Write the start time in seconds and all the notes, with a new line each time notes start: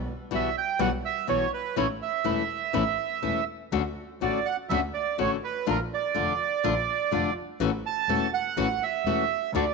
0.31 B1 B2 E3 G3 B3 F#4 E5
0.58 G5
0.79 B1 B2 E3 G3 B3 F#4 F#5
1.05 E5
1.27 B1 B2 E3 G3 B3 F#4 C#5
1.53 B4
1.76 A1 E3 A3 C#4 E4 C#5
2.02 E5
2.24 E1 E3 A3 C#4 E4
2.73 A1 E3 A3 C#4 E4
3.23 E1 E3 A3 C#4 E4
3.72 D2 D3 A3 C#4 F#4
4.21 A1 D3 A3 C#4 F#4 D5
4.45 F#5
4.69 D2 D3 A3 C#4 F#4 E5
4.94 D5
5.18 A1 D3 A3 C#4 F#4 C#5
5.44 B4
5.66 A#1 D3 A3 D4 F4 A#4
5.94 D5
6.14 F1 D3 A3 D4 F4
6.64 A#1 D3 A3 D4 F4
7.11 F1 D3 A3 D4 F4
7.60 A1 E3 A3 C#4 F#4
7.86 A5
8.09 E1 E3 A3 C#4 F#4
8.34 F#5
8.57 A1 E3 A3 C#4 F#4
8.83 E5
9.05 E1 E3 A3 C#4 F#4
9.53 D2 D3 A3 D4 F#4 D5